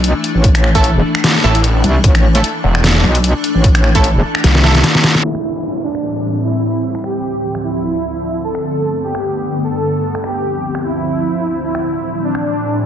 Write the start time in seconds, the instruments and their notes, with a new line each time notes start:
Already playing: wobble bass B1, ambient pad E3 A3 D4
0.04 closed hi-hat
0.24 closed hi-hat
0.35 wobble bass A1
0.44 kick, closed hi-hat
0.55 finger snap, closed hi-hat
0.64 finger snap
0.75 synth stab A3 E4 A4, kick, closed hi-hat
0.84 closed hi-hat
0.95 wobble bass E1
1.15 finger snap
1.24 snare, closed hi-hat
1.44 detuned saw bass A1, synth stab A3 E4 A4
1.55 closed hi-hat
1.64 closed hi-hat
1.84 wobble bass C2, closed hi-hat
2.04 wobble bass A1, kick, closed hi-hat
2.15 finger snap, closed hi-hat
2.35 synth stab A3 E4 A4, closed hi-hat
2.44 closed hi-hat
2.64 detuned saw bass E1
2.75 finger snap
2.84 snare, closed hi-hat
3.04 wobble bass B1
3.15 closed hi-hat
3.24 closed hi-hat
3.44 closed hi-hat
3.55 wobble bass A1
3.64 kick, closed hi-hat
3.75 finger snap, closed hi-hat
3.84 finger snap
3.95 synth stab A3 E4 A4, kick, closed hi-hat
4.04 closed hi-hat
4.15 wobble bass E1
4.35 finger snap
4.44 detuned saw bass C2, snare, closed hi-hat
4.55 snare
4.64 synth stab A3 E4 A4, snare
4.75 snare, closed hi-hat
4.84 snare, closed hi-hat
4.95 snare
5.04 snare, closed hi-hat
5.15 snare
5.24 ambient pad A2 E3 G3 C4, supersaw synth E4, downlifter
5.35 finger snap
5.84 supersaw synth D4
5.95 finger snap
6.44 supersaw synth E4
6.84 ambient pad D2 D3 F3
6.95 finger snap
7.04 supersaw synth G4, finger snap
7.55 finger snap
7.64 supersaw synth E4
8.44 ambient pad G2 A3 B3, supersaw synth A4
8.55 finger snap
9.04 supersaw synth G4
9.15 finger snap
9.64 supersaw synth A4
10.04 ambient pad D2 F3 C4
10.15 finger snap
10.24 supersaw synth G4, finger snap
10.75 finger snap
10.84 supersaw synth E4
11.64 ambient pad A2 E3 G3, supersaw synth E4
11.75 finger snap
12.24 supersaw synth D4
12.35 finger snap